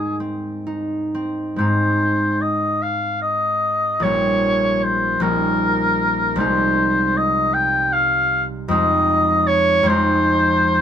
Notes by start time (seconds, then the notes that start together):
Already playing: G#2 G#3 D#4 G#4
0.20 C4
0.67 D#4
1.15 C4
1.56 G#2 G#3 C4 C5
1.60 D#4
2.41 D#5
2.83 F5
3.22 D#5
4.00 A#1 G3 C#4 C#5
4.06 D#4
4.83 C5
5.20 A#1 G3 C#4 D#4 A#4
6.36 C2 G#3 C4 C5
6.40 D#4
7.17 D#5
7.54 G5
7.93 F5
8.68 F2 G#3 C4 D#5
8.72 D#4
9.47 C#5
9.83 F2 G#3 C5
9.87 C4 D#4